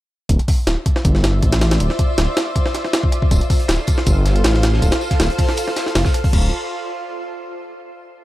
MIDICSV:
0, 0, Header, 1, 4, 480
1, 0, Start_track
1, 0, Key_signature, -1, "minor"
1, 0, Tempo, 377358
1, 371, Time_signature, 4, 2, 24, 8
1, 10484, End_track
2, 0, Start_track
2, 0, Title_t, "Ambient pad"
2, 0, Program_c, 0, 92
2, 371, Note_on_c, 0, 65, 85
2, 373, Note_on_c, 0, 76, 94
2, 374, Note_on_c, 0, 74, 78
2, 375, Note_on_c, 0, 72, 78
2, 4174, Note_off_c, 0, 74, 0
2, 4174, Note_off_c, 0, 76, 0
2, 4175, Note_off_c, 0, 72, 0
2, 4216, Note_on_c, 0, 72, 79
2, 4216, Note_on_c, 0, 77, 90
2, 4217, Note_on_c, 0, 69, 79
2, 8001, Note_off_c, 0, 65, 0
2, 8016, Note_off_c, 0, 69, 0
2, 8016, Note_off_c, 0, 72, 0
2, 8016, Note_off_c, 0, 77, 0
2, 10484, End_track
3, 0, Start_track
3, 0, Title_t, "Detuned saw bass"
3, 0, Program_c, 1, 39
3, 371, Note_on_c, 1, 26, 99
3, 486, Note_off_c, 1, 26, 0
3, 850, Note_on_c, 1, 26, 95
3, 965, Note_off_c, 1, 26, 0
3, 1333, Note_on_c, 1, 31, 87
3, 1794, Note_off_c, 1, 31, 0
3, 1812, Note_on_c, 1, 33, 89
3, 2274, Note_off_c, 1, 33, 0
3, 2294, Note_on_c, 1, 26, 100
3, 2407, Note_off_c, 1, 26, 0
3, 2773, Note_on_c, 1, 26, 97
3, 2887, Note_off_c, 1, 26, 0
3, 4214, Note_on_c, 1, 26, 97
3, 4327, Note_off_c, 1, 26, 0
3, 4692, Note_on_c, 1, 26, 94
3, 4806, Note_off_c, 1, 26, 0
3, 5173, Note_on_c, 1, 31, 84
3, 5634, Note_off_c, 1, 31, 0
3, 5651, Note_on_c, 1, 33, 87
3, 6113, Note_off_c, 1, 33, 0
3, 6133, Note_on_c, 1, 26, 95
3, 6247, Note_off_c, 1, 26, 0
3, 6611, Note_on_c, 1, 26, 96
3, 6725, Note_off_c, 1, 26, 0
3, 7572, Note_on_c, 1, 29, 84
3, 7686, Note_off_c, 1, 29, 0
3, 8052, Note_on_c, 1, 26, 98
3, 8275, Note_off_c, 1, 26, 0
3, 10484, End_track
4, 0, Start_track
4, 0, Title_t, "Drums"
4, 373, Note_on_c, 9, 36, 104
4, 373, Note_on_c, 9, 42, 85
4, 500, Note_off_c, 9, 36, 0
4, 500, Note_off_c, 9, 42, 0
4, 501, Note_on_c, 9, 42, 43
4, 613, Note_on_c, 9, 36, 102
4, 613, Note_on_c, 9, 46, 87
4, 628, Note_off_c, 9, 42, 0
4, 740, Note_off_c, 9, 36, 0
4, 741, Note_off_c, 9, 46, 0
4, 853, Note_on_c, 9, 38, 113
4, 853, Note_on_c, 9, 42, 90
4, 980, Note_off_c, 9, 38, 0
4, 980, Note_off_c, 9, 42, 0
4, 1092, Note_on_c, 9, 36, 99
4, 1092, Note_on_c, 9, 42, 71
4, 1219, Note_off_c, 9, 36, 0
4, 1219, Note_off_c, 9, 42, 0
4, 1221, Note_on_c, 9, 38, 59
4, 1333, Note_on_c, 9, 36, 116
4, 1334, Note_on_c, 9, 42, 87
4, 1348, Note_off_c, 9, 38, 0
4, 1460, Note_off_c, 9, 36, 0
4, 1460, Note_on_c, 9, 38, 41
4, 1461, Note_off_c, 9, 42, 0
4, 1575, Note_off_c, 9, 38, 0
4, 1575, Note_on_c, 9, 38, 107
4, 1575, Note_on_c, 9, 42, 82
4, 1702, Note_off_c, 9, 38, 0
4, 1702, Note_off_c, 9, 42, 0
4, 1813, Note_on_c, 9, 36, 89
4, 1813, Note_on_c, 9, 42, 65
4, 1940, Note_off_c, 9, 36, 0
4, 1940, Note_off_c, 9, 42, 0
4, 1940, Note_on_c, 9, 38, 105
4, 1940, Note_on_c, 9, 42, 85
4, 2053, Note_off_c, 9, 38, 0
4, 2053, Note_off_c, 9, 42, 0
4, 2053, Note_on_c, 9, 38, 112
4, 2053, Note_on_c, 9, 42, 81
4, 2179, Note_off_c, 9, 38, 0
4, 2179, Note_off_c, 9, 42, 0
4, 2179, Note_on_c, 9, 38, 108
4, 2179, Note_on_c, 9, 42, 80
4, 2292, Note_off_c, 9, 42, 0
4, 2292, Note_on_c, 9, 42, 85
4, 2307, Note_off_c, 9, 38, 0
4, 2419, Note_on_c, 9, 38, 44
4, 2420, Note_off_c, 9, 42, 0
4, 2531, Note_on_c, 9, 42, 70
4, 2532, Note_on_c, 9, 36, 100
4, 2546, Note_off_c, 9, 38, 0
4, 2658, Note_off_c, 9, 42, 0
4, 2659, Note_off_c, 9, 36, 0
4, 2772, Note_on_c, 9, 38, 118
4, 2772, Note_on_c, 9, 42, 93
4, 2899, Note_off_c, 9, 38, 0
4, 2899, Note_off_c, 9, 42, 0
4, 3012, Note_on_c, 9, 38, 113
4, 3012, Note_on_c, 9, 42, 83
4, 3139, Note_off_c, 9, 38, 0
4, 3139, Note_off_c, 9, 42, 0
4, 3252, Note_on_c, 9, 36, 89
4, 3252, Note_on_c, 9, 42, 65
4, 3379, Note_off_c, 9, 42, 0
4, 3379, Note_on_c, 9, 38, 53
4, 3380, Note_off_c, 9, 36, 0
4, 3492, Note_off_c, 9, 38, 0
4, 3492, Note_on_c, 9, 38, 35
4, 3492, Note_on_c, 9, 42, 70
4, 3619, Note_off_c, 9, 38, 0
4, 3619, Note_off_c, 9, 42, 0
4, 3619, Note_on_c, 9, 38, 43
4, 3732, Note_off_c, 9, 38, 0
4, 3732, Note_on_c, 9, 38, 122
4, 3732, Note_on_c, 9, 42, 92
4, 3859, Note_off_c, 9, 38, 0
4, 3859, Note_off_c, 9, 42, 0
4, 3860, Note_on_c, 9, 36, 104
4, 3972, Note_on_c, 9, 42, 68
4, 3987, Note_off_c, 9, 36, 0
4, 4099, Note_off_c, 9, 42, 0
4, 4100, Note_on_c, 9, 36, 105
4, 4212, Note_on_c, 9, 42, 83
4, 4213, Note_off_c, 9, 36, 0
4, 4213, Note_on_c, 9, 36, 107
4, 4222, Note_on_c, 9, 54, 97
4, 4339, Note_off_c, 9, 42, 0
4, 4340, Note_off_c, 9, 36, 0
4, 4341, Note_on_c, 9, 42, 43
4, 4349, Note_off_c, 9, 54, 0
4, 4452, Note_on_c, 9, 46, 82
4, 4453, Note_on_c, 9, 36, 107
4, 4453, Note_on_c, 9, 54, 71
4, 4468, Note_off_c, 9, 42, 0
4, 4571, Note_on_c, 9, 42, 44
4, 4579, Note_off_c, 9, 46, 0
4, 4580, Note_off_c, 9, 36, 0
4, 4581, Note_off_c, 9, 54, 0
4, 4686, Note_on_c, 9, 38, 121
4, 4688, Note_on_c, 9, 54, 80
4, 4693, Note_off_c, 9, 38, 0
4, 4693, Note_off_c, 9, 42, 0
4, 4693, Note_on_c, 9, 38, 116
4, 4693, Note_on_c, 9, 42, 90
4, 4815, Note_off_c, 9, 54, 0
4, 4820, Note_off_c, 9, 38, 0
4, 4820, Note_off_c, 9, 42, 0
4, 4923, Note_on_c, 9, 54, 78
4, 4933, Note_on_c, 9, 36, 98
4, 4933, Note_on_c, 9, 42, 72
4, 5050, Note_off_c, 9, 54, 0
4, 5060, Note_off_c, 9, 36, 0
4, 5060, Note_off_c, 9, 42, 0
4, 5061, Note_on_c, 9, 38, 56
4, 5168, Note_on_c, 9, 54, 100
4, 5173, Note_on_c, 9, 36, 112
4, 5173, Note_on_c, 9, 42, 91
4, 5188, Note_off_c, 9, 38, 0
4, 5295, Note_off_c, 9, 54, 0
4, 5300, Note_off_c, 9, 36, 0
4, 5300, Note_off_c, 9, 42, 0
4, 5413, Note_on_c, 9, 38, 48
4, 5413, Note_on_c, 9, 54, 64
4, 5414, Note_on_c, 9, 42, 67
4, 5540, Note_off_c, 9, 38, 0
4, 5540, Note_off_c, 9, 54, 0
4, 5541, Note_off_c, 9, 42, 0
4, 5541, Note_on_c, 9, 42, 46
4, 5649, Note_on_c, 9, 38, 111
4, 5650, Note_on_c, 9, 54, 87
4, 5653, Note_off_c, 9, 38, 0
4, 5653, Note_off_c, 9, 42, 0
4, 5653, Note_on_c, 9, 38, 126
4, 5653, Note_on_c, 9, 42, 93
4, 5777, Note_off_c, 9, 54, 0
4, 5780, Note_off_c, 9, 38, 0
4, 5780, Note_on_c, 9, 38, 41
4, 5781, Note_off_c, 9, 42, 0
4, 5892, Note_on_c, 9, 54, 63
4, 5893, Note_off_c, 9, 38, 0
4, 5893, Note_on_c, 9, 38, 105
4, 5893, Note_on_c, 9, 42, 80
4, 6019, Note_off_c, 9, 54, 0
4, 6021, Note_off_c, 9, 38, 0
4, 6021, Note_off_c, 9, 42, 0
4, 6024, Note_on_c, 9, 38, 60
4, 6132, Note_on_c, 9, 36, 90
4, 6133, Note_on_c, 9, 42, 61
4, 6136, Note_on_c, 9, 54, 95
4, 6152, Note_off_c, 9, 38, 0
4, 6248, Note_off_c, 9, 42, 0
4, 6248, Note_on_c, 9, 42, 39
4, 6259, Note_off_c, 9, 36, 0
4, 6259, Note_off_c, 9, 42, 0
4, 6259, Note_on_c, 9, 38, 101
4, 6259, Note_on_c, 9, 42, 75
4, 6263, Note_off_c, 9, 54, 0
4, 6374, Note_on_c, 9, 54, 73
4, 6386, Note_off_c, 9, 38, 0
4, 6386, Note_off_c, 9, 42, 0
4, 6495, Note_on_c, 9, 38, 40
4, 6499, Note_on_c, 9, 36, 86
4, 6499, Note_on_c, 9, 42, 62
4, 6501, Note_off_c, 9, 54, 0
4, 6611, Note_off_c, 9, 38, 0
4, 6611, Note_on_c, 9, 38, 120
4, 6611, Note_on_c, 9, 54, 83
4, 6612, Note_off_c, 9, 38, 0
4, 6612, Note_off_c, 9, 42, 0
4, 6612, Note_on_c, 9, 38, 113
4, 6612, Note_on_c, 9, 42, 89
4, 6626, Note_off_c, 9, 36, 0
4, 6738, Note_off_c, 9, 42, 0
4, 6738, Note_off_c, 9, 54, 0
4, 6738, Note_on_c, 9, 42, 43
4, 6739, Note_off_c, 9, 38, 0
4, 6844, Note_on_c, 9, 46, 85
4, 6851, Note_on_c, 9, 36, 99
4, 6853, Note_off_c, 9, 42, 0
4, 6853, Note_on_c, 9, 42, 70
4, 6971, Note_off_c, 9, 46, 0
4, 6979, Note_off_c, 9, 36, 0
4, 6979, Note_on_c, 9, 38, 53
4, 6980, Note_off_c, 9, 42, 0
4, 7085, Note_on_c, 9, 54, 97
4, 7092, Note_on_c, 9, 42, 89
4, 7106, Note_off_c, 9, 38, 0
4, 7212, Note_off_c, 9, 54, 0
4, 7219, Note_off_c, 9, 42, 0
4, 7219, Note_on_c, 9, 38, 43
4, 7328, Note_on_c, 9, 54, 79
4, 7333, Note_off_c, 9, 38, 0
4, 7333, Note_on_c, 9, 38, 38
4, 7333, Note_on_c, 9, 42, 69
4, 7334, Note_off_c, 9, 38, 0
4, 7334, Note_on_c, 9, 38, 97
4, 7456, Note_off_c, 9, 54, 0
4, 7460, Note_off_c, 9, 38, 0
4, 7460, Note_off_c, 9, 42, 0
4, 7460, Note_on_c, 9, 38, 41
4, 7463, Note_on_c, 9, 42, 38
4, 7570, Note_on_c, 9, 46, 71
4, 7573, Note_off_c, 9, 38, 0
4, 7573, Note_off_c, 9, 42, 0
4, 7573, Note_on_c, 9, 38, 122
4, 7573, Note_on_c, 9, 42, 97
4, 7692, Note_off_c, 9, 38, 0
4, 7692, Note_on_c, 9, 38, 105
4, 7697, Note_off_c, 9, 46, 0
4, 7699, Note_on_c, 9, 36, 102
4, 7700, Note_off_c, 9, 42, 0
4, 7703, Note_on_c, 9, 54, 77
4, 7809, Note_on_c, 9, 42, 39
4, 7814, Note_off_c, 9, 42, 0
4, 7814, Note_on_c, 9, 42, 69
4, 7819, Note_off_c, 9, 38, 0
4, 7826, Note_off_c, 9, 36, 0
4, 7830, Note_off_c, 9, 54, 0
4, 7939, Note_on_c, 9, 36, 103
4, 7940, Note_on_c, 9, 46, 68
4, 7941, Note_off_c, 9, 42, 0
4, 8052, Note_off_c, 9, 36, 0
4, 8052, Note_on_c, 9, 36, 108
4, 8054, Note_on_c, 9, 49, 83
4, 8067, Note_off_c, 9, 46, 0
4, 8179, Note_off_c, 9, 36, 0
4, 8181, Note_off_c, 9, 49, 0
4, 10484, End_track
0, 0, End_of_file